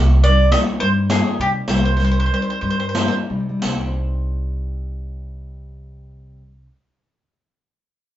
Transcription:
Already playing: C2 C3
0.24 G3 C4 D5
0.28 D#4
0.52 G3 C4 D#4 D#5, riq
0.80 G2 G3 C5
1.10 G3 C4 D#4 G#4, riq
1.39 C3 G3 C4 D#4 G4
1.68 C2 G3 C5, riq
1.77 C5
1.85 C5
1.97 G3 C4 D#4 C5, riq
2.04 C5
2.11 C5
2.20 C5
2.26 C5
2.32 G3 C4 D#4 C5
2.42 C5
2.50 C5
2.61 G2 G3 C5
2.70 C5
2.80 C5
2.89 C5
2.95 G3 C4 D#4 C5, riq
3.08 C5
3.30 C3 G3 C4 D#4
3.40 C3
3.49 G3
3.59 D#4, riq
3.63 C2
3.68 C5
3.78 G5
3.87 C5

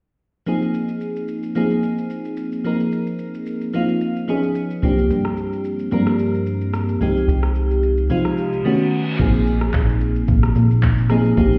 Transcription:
0.46 F3 A#3 C4 D#4 G#4, shaker
0.62 shaker
0.74 shaker
0.88 shaker
1.01 shaker
1.16 shaker
1.28 shaker
1.43 shaker
1.55 F3 A#3 C4 D#4 G#4, shaker
1.70 shaker
1.83 shaker
1.98 shaker
2.10 shaker
2.25 shaker
2.37 shaker
2.52 shaker
2.64 F3 A#3 C4 D#4 A#4, shaker
2.80 shaker
2.92 shaker
3.07 shaker
3.19 shaker
3.34 shaker
3.46 shaker
3.61 shaker
3.73 F3 A#3 C4 D#4 F4, shaker
3.88 shaker
4.01 shaker
4.16 shaker
4.28 F3 B3 C#4 D#4 G#4, shaker
4.43 shaker
4.55 shaker
4.71 shaker
4.82 C2 F3 A#3 C4 D4 G4, shaker
4.98 shaker
5.10 G2, shaker
5.25 cross-stick, shaker
5.37 shaker
5.53 shaker
5.64 shaker
5.79 shaker
5.91 G2 F3 A#3 C4 D4 A#4, shaker
6.07 cross-stick, shaker
6.19 shaker
6.34 shaker
6.46 shaker
6.61 shaker
6.73 cross-stick, shaker
6.89 shaker
7.01 C2 F3 G#3 C4 D#4 G4, shaker
7.17 shaker
7.28 C2, shaker
7.43 cross-stick, shaker
7.55 shaker
7.71 shaker
7.83 shaker
7.97 shaker
8.10 C2 F3 G#3 C4 D#4 F4, reverse cymbal, shaker
8.25 cross-stick, shaker
8.37 shaker
8.53 shaker
8.64 D#3 A3 B3 C#4 F#4
9.19 A#1 F3 A#3 C4 D#4 G#4, kick, crash, shaker
9.35 shaker
9.47 shaker
9.61 cross-stick, shaker
9.73 A#1, kick, clap, shaker
9.89 shaker
10.01 shaker
10.16 shaker
10.28 A#1, kick, shaker
10.43 cross-stick, shaker
10.55 A#2, shaker
10.71 shaker
10.83 kick, clap, shaker
10.98 shaker
11.09 F3 A#3 C4 D#4 G#4, cross-stick, shaker
11.25 shaker
11.37 A#1 F3 A#3 C4 D#4 G4, kick, shaker
11.53 shaker

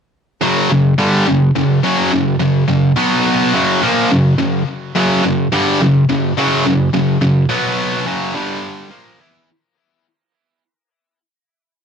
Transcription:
0.42 F#2 C#3 F#3
0.70 F#2 C#3
0.98 G2 D3 G3
1.27 F#2 C#3
1.56 F#2 C#3
1.84 F#2 C#3 F#3
2.12 F#2 C#3
2.40 F#2 C#3
2.68 F#2 C#3
2.96 B2 F#3 B3
3.53 F#2 C#3 F#3
3.82 A#2 F3 A#3
4.11 F#2 C#3
4.39 F#2 C#3
4.95 F#2 C#3 F#3
5.24 F#2 C#3
5.52 G2 D3 G3
5.81 F#2 C#3
6.09 F#2 C#3
6.37 F#2 C#3 F#3
6.65 F#2 C#3
6.93 F#2 C#3
7.21 F#2 C#3
7.49 B2 F#3 B3
8.06 F#2 C#3 F#3
8.34 G2 D3 G3
8.90 A#2 F3 A#3
9.20 E3 B3 E4

